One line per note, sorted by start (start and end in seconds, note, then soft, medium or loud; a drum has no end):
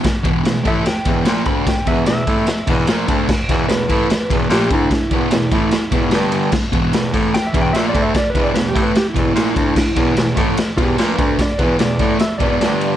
0.04 0.21 E2 soft
0.04 muted distorted electric guitar stroke medium
0.04 kick loud
0.04 snare loud
0.04 ride loud
0.23 0.42 E2 medium
0.23 0.43 B2 medium
0.23 0.44 E3 loud
0.23 kick loud
0.23 ride medium
0.44 0.60 E2 medium
0.44 0.64 E2 medium
0.44 0.60 B2 medium
0.44 snare loud
0.44 ride medium
0.64 0.84 A2 medium
0.64 0.85 E3 medium
0.64 0.85 A3 loud
0.64 0.86 E5 medium
0.64 kick loud
0.64 ride medium
0.86 1.03 E2 soft
0.86 1.46 G5 medium
0.86 muted distorted electric guitar stroke medium
0.86 snare loud
0.86 ride medium
1.05 1.25 E2 medium
1.05 1.26 E2 medium
1.05 1.25 B2 medium
1.05 1.26 E3 medium
1.05 kick loud
1.05 ride medium
1.25 1.45 A#2 medium
1.25 1.45 A#2 loud
1.25 1.46 F3 medium
1.25 1.46 A#3 loud
1.25 snare loud
1.25 ride medium
1.46 1.65 D2 medium
1.46 1.66 D3 medium
1.46 1.66 A3 medium
1.46 1.66 D4 loud
1.46 1.66 B5 loud
1.46 kick loud
1.46 ride medium
1.65 1.83 E2 soft
1.65 1.85 G5 medium
1.65 muted distorted electric guitar stroke medium
1.65 kick loud
1.65 snare loud
1.65 ride loud
1.86 2.06 E2 medium
1.86 2.06 B2 loud
1.86 2.07 E3 loud
1.86 2.06 E5 medium
1.86 kick loud
1.86 ride medium
2.06 2.23 E2 medium
2.06 2.27 E2 medium
2.06 2.24 B2 medium
2.06 3.25 E5 loud
2.06 snare loud
2.06 ride loud
2.27 2.46 A2 medium
2.27 2.47 A2 medium
2.27 2.48 E3 medium
2.27 2.48 A3 loud
2.27 kick loud
2.27 ride medium
2.47 2.64 E2 soft
2.47 muted distorted electric guitar stroke medium
2.47 snare loud
2.47 ride medium
2.67 2.87 E2 medium
2.67 2.87 E2 loud
2.67 2.88 B2 medium
2.67 2.88 E3 loud
2.67 kick loud
2.67 ride medium
2.87 3.07 A#2 medium
2.87 3.08 A#2 medium
2.87 3.08 F3 medium
2.87 3.09 A#3 loud
2.87 snare loud
2.87 ride loud
3.08 3.28 D2 medium
3.08 3.28 D3 medium
3.08 3.28 A3 medium
3.08 3.29 D4 medium
3.08 kick loud
3.08 ride medium
3.28 3.45 E2 soft
3.28 muted distorted electric guitar stroke medium
3.28 kick loud
3.28 snare loud
3.28 crash medium
3.49 3.67 E2 loud
3.49 3.68 E2 loud
3.49 3.68 B2 medium
3.49 3.70 E3 loud
3.49 kick loud
3.49 ride medium
3.68 3.88 E2 medium
3.68 3.85 E2 medium
3.68 3.85 B2 medium
3.68 4.48 B4 loud
3.68 snare loud
3.68 ride loud
3.88 4.09 A2 medium
3.88 4.09 E3 medium
3.88 4.09 A3 medium
3.88 kick loud
3.88 ride medium
4.10 4.26 E2 soft
4.10 muted distorted electric guitar stroke medium
4.10 snare loud
4.10 ride medium
4.29 4.50 E2 medium
4.29 4.49 E2 medium
4.29 4.49 B2 medium
4.29 4.49 E3 medium
4.29 kick loud
4.29 ride medium
4.49 4.69 A#2 medium
4.49 4.70 A#2 medium
4.49 4.70 F3 medium
4.49 4.70 A#3 medium
4.49 4.71 G4 medium
4.49 snare loud
4.49 ride medium
4.70 4.90 D2 medium
4.70 4.91 D3 medium
4.70 4.91 A3 medium
4.70 4.91 D4 loud
4.70 4.92 E4 medium
4.70 kick loud
4.70 ride medium
4.91 5.08 E2 soft
4.91 6.10 E4 medium
4.91 muted distorted electric guitar stroke medium
4.91 kick loud
4.91 snare loud
4.91 ride medium
5.11 5.30 E2 medium
5.11 5.31 E2 medium
5.11 5.32 B2 loud
5.11 5.32 E3 medium
5.11 kick loud
5.11 ride medium
5.31 5.50 E2 medium
5.31 5.48 E2 medium
5.31 5.49 B2 medium
5.31 snare loud
5.31 ride loud
5.52 5.71 A2 medium
5.52 5.72 E3 loud
5.52 5.72 A3 loud
5.52 kick loud
5.52 ride medium
5.71 5.89 E2 soft
5.71 muted distorted electric guitar stroke medium
5.71 snare loud
5.71 ride loud
5.92 6.10 E2 medium
5.92 6.11 E2 medium
5.92 6.11 B2 medium
5.92 6.12 E3 medium
5.92 kick loud
5.92 ride medium
6.11 6.52 G2 medium
6.11 6.51 G2 medium
6.11 6.52 D3 medium
6.11 6.53 G3 loud
6.11 snare loud
6.11 ride loud
6.32 ride medium
6.52 6.69 E2 soft
6.52 muted distorted electric guitar stroke medium
6.52 kick loud
6.52 snare loud
6.52 crash medium
6.72 6.92 E2 medium
6.72 6.92 B2 medium
6.72 6.93 E3 loud
6.72 kick loud
6.72 ride medium
6.93 7.10 E2 medium
6.93 7.13 E2 medium
6.93 7.10 B2 medium
6.93 snare loud
6.93 ride loud
7.13 7.33 A2 medium
7.13 7.33 A2 loud
7.13 7.34 E3 medium
7.13 7.34 A3 loud
7.13 kick loud
7.13 ride medium
7.34 7.51 E2 soft
7.34 7.47 G5 medium
7.34 muted distorted electric guitar stroke medium
7.34 snare loud
7.34 ride loud
7.47 7.60 E5 medium
7.53 7.74 E2 medium
7.53 7.73 E2 medium
7.53 7.73 B2 medium
7.53 7.74 E3 loud
7.53 kick loud
7.53 ride medium
7.61 7.74 G5 medium
7.73 7.93 A#2 medium
7.73 7.94 F3 medium
7.73 7.95 A#3 loud
7.73 7.87 E5 loud
7.73 snare loud
7.73 ride loud
7.89 8.02 D5 medium
7.94 8.14 D2 loud
7.94 8.14 D3 medium
7.94 8.15 A3 medium
7.94 8.15 D4 loud
7.94 kick loud
7.94 ride medium
8.02 8.15 E5 medium
8.14 8.31 E2 soft
8.14 8.29 D5 loud
8.14 muted distorted electric guitar stroke medium
8.14 kick loud
8.14 snare loud
8.14 ride medium
8.30 8.42 B4 loud
8.35 8.53 E2 medium
8.35 8.53 E2 loud
8.35 8.54 B2 loud
8.35 8.56 E3 loud
8.35 kick loud
8.35 ride medium
8.42 8.55 D5 medium
8.53 8.73 E2 medium
8.53 8.71 E2 medium
8.53 8.72 B2 medium
8.53 8.68 B4 loud
8.53 snare loud
8.53 ride loud
8.69 8.82 G4 medium
8.74 8.94 A2 loud
8.74 8.94 A2 medium
8.74 8.95 E3 medium
8.74 8.96 A3 loud
8.74 kick loud
8.74 ride medium
8.83 8.96 B4 medium
8.95 9.11 E2 soft
8.95 9.09 G4 medium
8.95 muted distorted electric guitar stroke medium
8.95 snare loud
8.95 ride loud
9.10 10.28 E4 medium
9.15 9.35 E2 medium
9.15 9.34 B2 medium
9.15 9.34 E3 loud
9.15 kick loud
9.15 ride medium
9.34 9.55 A#2 medium
9.34 9.55 F3 medium
9.34 9.56 A#3 loud
9.34 snare loud
9.34 ride loud
9.55 9.76 D2 medium
9.55 9.76 D3 medium
9.55 9.76 A3 medium
9.55 9.76 D4 loud
9.55 kick loud
9.55 ride medium
9.74 9.93 E2 soft
9.74 muted distorted electric guitar stroke medium
9.74 kick loud
9.74 snare loud
9.74 crash medium
9.95 10.15 E2 medium
9.95 10.16 E2 loud
9.95 10.15 B2 loud
9.95 10.17 E3 loud
9.95 kick loud
9.95 ride medium
10.16 10.33 E2 medium
10.16 10.36 E2 medium
10.16 10.33 B2 medium
10.16 snare loud
10.16 ride loud
10.36 10.57 A2 medium
10.36 10.57 E3 medium
10.36 10.58 A3 loud
10.36 kick loud
10.36 ride medium
10.57 10.74 E2 soft
10.57 muted distorted electric guitar stroke medium
10.57 snare loud
10.57 ride loud
10.77 10.97 E2 medium
10.77 10.97 B2 medium
10.77 10.98 E3 loud
10.77 10.98 G4 loud
10.77 kick loud
10.77 ride medium
10.97 11.17 A#2 medium
10.97 11.17 A#2 loud
10.97 11.18 F3 loud
10.97 11.19 A#3 loud
10.97 11.38 B4 loud
10.97 snare loud
10.97 ride loud
11.18 11.38 D2 medium
11.18 11.38 D3 medium
11.18 11.39 A3 medium
11.18 11.39 D4 loud
11.18 kick loud
11.18 ride medium
11.38 11.55 E2 soft
11.38 11.60 D5 medium
11.38 muted distorted electric guitar stroke medium
11.38 kick loud
11.38 snare loud
11.38 ride loud
11.59 11.78 E2 medium
11.59 11.79 B2 loud
11.59 11.80 E3 loud
11.59 11.79 B4 loud
11.59 kick loud
11.59 ride medium
11.79 11.98 E2 medium
11.79 11.96 E2 medium
11.79 11.96 B2 medium
11.79 12.19 D5 medium
11.79 snare loud
11.79 ride loud
11.99 12.20 A2 loud
11.99 12.19 A2 medium
11.99 12.20 E3 medium
11.99 12.20 A3 loud
11.99 kick loud
11.99 ride medium
12.19 12.36 E2 soft
12.19 12.41 E5 medium
12.19 muted distorted electric guitar stroke medium
12.19 snare loud
12.19 ride medium
12.38 12.60 E2 medium
12.38 12.60 B2 medium
12.38 12.61 E3 medium
12.38 12.97 D5 loud
12.38 kick loud
12.38 ride medium
12.61 12.97 G2 medium
12.61 12.97 D3 medium
12.61 12.97 G3 medium
12.61 snare loud
12.61 ride medium
12.81 ride medium